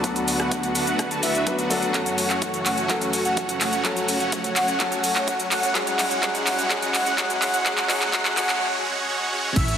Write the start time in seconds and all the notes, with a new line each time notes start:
Already playing: D2 D3 F#3 B3 D4 F#4 A4 B4, riser
0.03 F#3 A3 B3 D4 F#4 A4 B4 F#5, kick, closed hi-hat, shaker
0.16 closed hi-hat, shaker
0.28 open hi-hat, shaker
0.39 A3 D4 F#4 B4 F#5, cross-stick, shaker
0.51 kick, closed hi-hat, shaker
0.63 closed hi-hat, shaker
0.75 A3 D4 F#4 B4 F#5, open hi-hat, shaker
0.87 closed hi-hat, shaker
0.99 kick, cross-stick, closed hi-hat, shaker
1.11 A3 D4 F#4 B4 A5, closed hi-hat, shaker
1.23 A3 D4 F#4 B4 E5, open hi-hat, shaker
1.35 closed hi-hat, shaker
1.46 F#3 B3 D4 B4, kick, closed hi-hat, shaker
1.59 A3 D4 F#4 B4 F#5, closed hi-hat, shaker
1.70 F#3 B3 D4 A4, open hi-hat, shaker
1.82 closed hi-hat, shaker
1.93 F#2 C#3 F#3 A3 C#4 F#4 A4 C#5 F#5, kick, clap, closed hi-hat, shaker
2.06 closed hi-hat, shaker
2.18 open hi-hat, shaker
2.30 A3 C#4 F#4 C#5 F#5, clap, shaker
2.42 kick, closed hi-hat, shaker
2.54 closed hi-hat, shaker
2.66 A3 C#4 F#4 C#5 F#5, clap, open hi-hat, shaker
2.78 closed hi-hat, shaker
2.88 F#3 A3 C#4 F#4 A4 C#5 F#5, kick, clap, closed hi-hat, shaker
3.01 closed hi-hat, shaker
3.13 open hi-hat, shaker
3.25 A3 C#4 F#4 C#5 F#5, closed hi-hat, shaker
3.37 kick, closed hi-hat, shaker
3.49 closed hi-hat, shaker
3.61 A3 C#4 F#4 C#5 F#5, clap, open hi-hat, shaker
3.73 closed hi-hat, shaker
3.84 F#3 A3 C#4 F#4 A4 C#5 F#5, kick, clap, closed hi-hat, shaker
3.97 closed hi-hat, shaker
4.08 open hi-hat, shaker
4.20 A3 C#4 F#4 C#5 F#5, closed hi-hat, shaker
4.32 kick, closed hi-hat, shaker
4.44 closed hi-hat, shaker
4.56 A3 C#4 F#4 C#5 F#5, clap, open hi-hat, shaker
4.68 closed hi-hat, shaker
4.79 F#3 A3 C#4 F#4 A4 C#5 F#5, kick, clap, closed hi-hat, shaker
4.92 closed hi-hat, shaker
5.04 open hi-hat, shaker
5.16 A3 C#4 F#4 C#5 F#5, clap, shaker
5.28 kick, closed hi-hat, shaker
5.40 closed hi-hat, shaker
5.51 A3 C#4 F#4 C#5 F#5, clap, open hi-hat, shaker
5.63 closed hi-hat, shaker
5.74 G#2 F#3 G#3 C#4 E4 F#4 G#4 C#5 F#5, kick, clap, closed hi-hat, shaker
5.87 closed hi-hat, shaker
5.99 clap, open hi-hat, shaker
6.11 G#3 C#4 F#4 C#5 F#5, closed hi-hat, shaker
6.22 F#3 G#3 C#4 F#4 G#4 C#5 F#5, kick, clap, closed hi-hat, shaker
6.35 closed hi-hat, shaker
6.47 clap, open hi-hat, shaker
6.58 G#3 C#4 F#4 C#5 F#5, closed hi-hat, shaker
6.69 F#3 G#3 C#4 F#4 G#4 C#5 F#5, kick, clap, closed hi-hat, shaker
6.82 closed hi-hat, shaker
6.94 clap, open hi-hat, shaker
7.06 G#3 C#4 F#4 C#5 F#5, closed hi-hat, shaker
7.17 F#3 G#3 C#4 F#4 G#4 C#5 F#5, kick, clap, closed hi-hat, shaker
7.30 closed hi-hat, shaker
7.42 clap, open hi-hat, shaker
7.54 G#3 C#4 F#4 C#5 F#5, closed hi-hat, shaker
7.65 F#3 G#3 C#4 F#4 G#4 C#5 F#5, kick, clap, closed hi-hat, shaker
7.78 clap, closed hi-hat, shaker
7.88 F#3 G#3 C#4 F#4 G#4 C#5 F#5, clap, open hi-hat, shaker
8.02 clap, closed hi-hat, shaker
8.12 F#3 G#3 C#4 F#4 G#4 C#5 F#5, kick, clap, closed hi-hat, shaker
8.25 clap, closed hi-hat, shaker
8.36 F#3 G#3 C#4 F#4 G#4 C#5 F#5, clap, open hi-hat, shaker
8.49 clap, closed hi-hat, shaker
8.61 G#3 C#4 F#4 C#5 F#5
8.85 G#3 C#4 F#4 C#5 F#5
9.09 G#3 C#4 F#4 C#5 F#5
9.32 G#3 C#4 F#4 C#5 F#5
9.56 A1 A3 C#4 E4 C#5 E5, kick, closed hi-hat, crash, sub drop, shaker
9.68 closed hi-hat, shaker